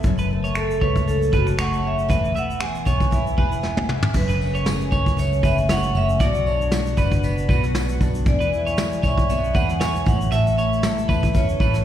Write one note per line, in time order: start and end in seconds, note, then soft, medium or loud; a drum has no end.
0.00 0.56 A4 medium
0.00 shaker medium
0.04 0.77 F#1 loud
0.04 2.10 F#2 medium
0.04 kick loud
0.18 0.29 B4 medium
0.18 shaker soft
0.30 0.81 A3 medium
0.44 0.55 C#5 medium
0.44 shaker soft
0.55 1.31 A4 medium
0.55 0.82 A4 medium
0.55 finger snap loud
0.55 shaker medium
0.71 shaker medium
0.81 1.29 C#2 medium
0.81 1.57 A3 medium
0.81 1.08 B4 medium
0.81 1.19 C#5 medium
0.81 kick medium
0.96 kick medium
0.96 shaker soft
1.08 1.82 C#4 medium
1.08 1.31 A4 medium
1.08 shaker medium
1.22 shaker medium
1.32 2.06 F#1 loud
1.32 1.46 F#4 medium
1.32 2.15 A4 medium
1.32 1.46 B4 medium
1.32 kick loud
1.32 shaker soft
1.47 finger snap soft
1.47 shaker medium
1.58 2.15 A3 medium
1.58 1.96 C#5 medium
1.58 1.86 F#5 medium
1.58 finger snap loud
1.58 shaker medium
1.73 shaker medium
1.83 2.15 C#4 medium
1.87 2.39 E5 medium
1.99 shaker medium
2.09 2.83 E1 loud
2.09 4.15 E3 medium
2.09 2.34 B4 loud
2.09 kick loud
2.09 shaker medium
2.25 shaker soft
2.34 2.84 B3 medium
2.34 2.60 E5 medium
2.34 shaker soft
2.38 2.63 F#5 medium
2.50 shaker soft
2.60 3.37 G#4 medium
2.60 3.86 G#5 medium
2.60 finger snap loud
2.60 shaker medium
2.75 shaker medium
2.85 3.34 B1 medium
2.85 3.61 B3 medium
2.85 3.24 C#5 medium
2.85 kick medium
2.85 shaker medium
3.00 kick medium
3.00 shaker soft
3.11 3.88 E4 medium
3.11 kick loud
3.11 shaker medium
3.27 shaker medium
3.38 4.11 E1 medium
3.38 4.14 G#4 medium
3.38 3.52 B4 medium
3.38 kick medium
3.52 shaker medium
3.63 4.20 B3 medium
3.63 snare medium
3.77 high tom medium
3.89 4.21 E4 medium
3.89 mid tom medium
4.03 floor tom medium
4.14 4.88 F#1 loud
4.14 6.20 F#2 medium
4.14 4.65 G#4 medium
4.14 5.22 B4 medium
4.14 kick loud
4.14 crash medium
4.29 4.40 B4 medium
4.29 shaker soft
4.41 4.90 C#4 medium
4.41 tambourine soft
4.55 4.66 C#5 medium
4.55 shaker soft
4.66 5.42 G#4 medium
4.66 snare loud
4.66 tambourine medium
4.66 shaker medium
4.81 shaker medium
4.91 5.40 C#2 medium
4.91 5.93 C#4 medium
4.91 5.30 C#5 medium
4.91 kick medium
4.91 tambourine soft
5.06 kick medium
5.06 shaker medium
5.17 5.68 A3 medium
5.17 5.45 C#5 medium
5.17 tambourine medium
5.17 shaker medium
5.33 shaker medium
5.43 5.91 F#1 loud
5.43 6.20 G#4 medium
5.43 5.57 B4 medium
5.43 5.71 E5 medium
5.43 kick loud
5.43 tambourine soft
5.43 shaker medium
5.58 shaker medium
5.69 6.26 A3 medium
5.69 6.07 C#5 medium
5.69 5.97 F#5 loud
5.69 snare loud
5.69 tambourine medium
5.69 shaker medium
5.83 shaker medium
5.95 6.19 F#1 loud
5.95 6.26 C#4 medium
5.95 6.23 E5 medium
5.95 tambourine soft
6.09 shaker medium
6.20 6.94 B1 loud
6.20 8.26 B2 medium
6.20 6.72 F#4 medium
6.20 6.47 D5 loud
6.20 7.28 D5 loud
6.20 kick loud
6.20 tambourine soft
6.20 shaker medium
6.34 shaker soft
6.46 6.97 D4 medium
6.46 6.71 C#5 medium
6.46 tambourine soft
6.61 shaker soft
6.71 7.48 F#4 medium
6.71 snare loud
6.71 tambourine medium
6.71 shaker medium
6.86 shaker medium
6.97 7.45 F#1 medium
6.97 7.99 D4 medium
6.97 7.35 B4 medium
6.97 kick medium
6.97 tambourine soft
6.97 shaker medium
7.12 kick medium
7.12 shaker medium
7.23 7.76 B3 medium
7.23 7.97 B4 medium
7.23 tambourine medium
7.23 shaker medium
7.38 shaker medium
7.49 7.97 B1 loud
7.49 8.26 F#4 medium
7.49 7.63 B4 medium
7.49 kick loud
7.49 tambourine soft
7.63 snare soft
7.63 shaker medium
7.75 8.32 B3 medium
7.75 snare loud
7.75 tambourine medium
7.75 shaker medium
7.89 shaker medium
8.01 8.24 B1 loud
8.01 8.32 D4 medium
8.01 kick medium
8.01 tambourine soft
8.01 shaker soft
8.15 shaker medium
8.26 8.99 E2 loud
8.26 11.76 E3 medium
8.26 8.77 G#4 medium
8.26 9.33 D5 medium
8.26 kick loud
8.26 shaker medium
8.40 8.51 B4 medium
8.40 shaker soft
8.53 9.03 E4 medium
8.53 shaker soft
8.67 8.77 C#5 medium
8.67 shaker soft
8.78 9.53 G#4 medium
8.78 snare loud
8.78 tambourine medium
8.78 shaker medium
8.92 shaker medium
9.03 9.51 B1 medium
9.03 10.57 E4 medium
9.03 9.41 C#5 medium
9.03 kick medium
9.03 tambourine soft
9.03 shaker medium
9.18 kick medium
9.18 shaker soft
9.29 9.79 B3 medium
9.29 9.56 E5 medium
9.29 tambourine medium
9.29 shaker medium
9.44 shaker medium
9.54 10.02 E2 medium
9.54 10.11 G#4 medium
9.54 9.68 B4 medium
9.54 9.81 F#5 loud
9.54 kick medium
9.54 tambourine medium
9.69 snare soft
9.69 shaker medium
9.80 10.11 B3 medium
9.80 10.18 C#5 medium
9.80 10.07 G#5 medium
9.80 snare loud
9.80 tambourine medium
9.80 shaker medium
9.96 shaker medium
10.06 11.05 A1 loud
10.06 10.30 A2 medium
10.06 10.33 F#5 medium
10.06 kick loud
10.06 tambourine soft
10.06 shaker soft
10.21 shaker medium
10.32 11.85 A2 medium
10.32 10.83 A4 medium
10.32 10.56 E5 medium
10.32 11.38 E5 loud
10.32 tambourine soft
10.32 shaker medium
10.47 shaker soft
10.57 11.09 E4 medium
10.57 10.82 C#5 medium
10.57 tambourine soft
10.57 shaker soft
10.73 shaker soft
10.83 11.61 A4 medium
10.83 snare loud
10.83 tambourine medium
10.83 shaker medium
10.98 shaker medium
11.09 11.56 E2 medium
11.09 11.85 E4 medium
11.09 11.46 B4 medium
11.09 kick medium
11.09 tambourine soft
11.23 kick medium
11.23 shaker soft
11.34 11.85 C#4 medium
11.34 11.85 C#5 medium
11.34 kick medium
11.34 tambourine medium
11.34 shaker medium
11.49 shaker medium
11.60 11.85 A1 loud
11.60 11.85 A4 medium
11.60 11.74 B4 medium
11.60 kick medium
11.60 tambourine soft
11.74 snare soft
11.74 shaker medium